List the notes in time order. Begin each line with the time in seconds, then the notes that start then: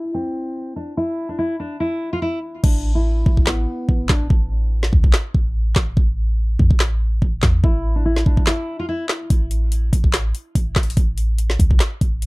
Already playing: E4
0.14 C4
0.76 D4
0.97 E4
1.29 D4
1.39 E4
1.60 D4
1.80 E4
2.13 F4
2.22 E4
2.63 A1 D4, kick, crash
2.95 E4
3.26 A1, kick
3.37 kick
3.46 B3, snare, clap
3.89 A1, kick
4.09 A1 D4, kick, snare, clap
4.30 A1, kick
4.83 snare
4.93 C2, kick
5.04 kick
5.13 snare, clap
5.34 A1, kick
5.75 A1, kick, snare, clap
5.97 A1, kick
6.59 E2, kick
6.71 A1, kick
6.80 snare, clap
7.22 A1, kick
7.42 E2, kick, snare, clap
7.64 A1 E4, kick
7.96 D4
8.05 E4
8.16 snare
8.26 A1 D4, kick
8.37 A1, kick
8.46 E4, snare, clap
8.79 F4
8.89 E4
9.09 snare, clap
9.30 A1, kick, closed hi-hat
9.51 closed hi-hat
9.72 closed hi-hat
9.93 A1, kick, closed hi-hat
10.04 kick
10.13 snare, clap, closed hi-hat
10.35 closed hi-hat
10.55 A1, kick, closed hi-hat
10.75 A1, kick, snare, clap, closed hi-hat
10.83 closed hi-hat
10.90 closed hi-hat
10.97 A1, kick, closed hi-hat
11.18 closed hi-hat
11.38 closed hi-hat
11.50 snare
11.60 C2, kick, closed hi-hat
11.71 kick
11.80 snare, clap, closed hi-hat
12.01 A1, kick, closed hi-hat
12.22 closed hi-hat